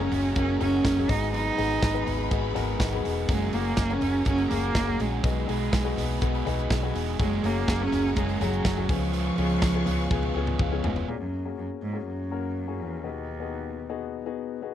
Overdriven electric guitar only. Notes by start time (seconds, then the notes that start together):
Already playing: F#3 A#3 C#4 F#4 G#4
0.11 C#4 F#4 G#4
0.36 A#3 C#4 F#4 G#4
0.59 C#4 F#4 G#4
0.84 F#3 A#3 C#4 F#4 G#4
1.08 G#3 B3 D#4 G#4
1.33 G#2 F#3 G#3 B3 D#4 G#4
1.58 G#3 B3 D#4 G#4
1.83 G#2 F#3 G#3 B3 D#4 G#4
2.06 G#3 B3 D#4 G#4
2.31 G#3 B3 D#4 G#4
2.55 G#3 B3 D#4 G#4
2.80 G#2 F#3 G#3 B3 D#4 G#4
3.04 G#3 B3 D#4 G#4
3.29 F#3 A#3 C#4 F#4 G#4
3.53 C#4 F#4 G#4
3.77 F#3 A#3 C#4 F#4 G#4
4.02 C#4 F#4 G#4
4.26 A#3 C#4 F#4 G#4
4.50 C#4 F#4 G#4
4.74 F#3 A#3 C#4 F#4 G#4
4.98 C#4 F#4 G#4
5.23 B2 F#3 G#3 B3 D#4 G#4
5.48 G#3 B3 D#4 G#4
5.72 B2 F#3 G#3 B3 D#4 G#4
5.96 G#3 B3 D#4 G#4
6.21 G#3 B3 D#4 G#4
6.45 G#3 B3 D#4 G#4
6.69 B2 F#3 G#3 B3 D#4 G#4
6.94 G#3 B3 D#4 G#4
7.19 F#3 A#3 C#4 F#4 G#4
7.43 C#4 F#4 G#4
7.68 F#3 A#3 C#4 F#4 G#4
7.92 C#4 F#4 G#4
8.16 A#3 C#4 F#4 G#4
8.40 C#4 F#4 G#4
8.65 F#3 A#3 C#4 F#4 G#4
8.89 G#3 B3 F4 G#4
9.13 C#3 F3 G#3 B3 F4 G#4
9.37 G#3 B3 F4 G#4
9.61 C#3 F3 G#3 B3 F4 G#4
9.85 G#3 B3 F4 G#4
10.10 G#3 B3 F4 G#4
10.34 G#3 B3 F4 G#4
10.59 C#3 F3 G#3 B3 F4 G#4
10.82 G#3 B3 F4 G#4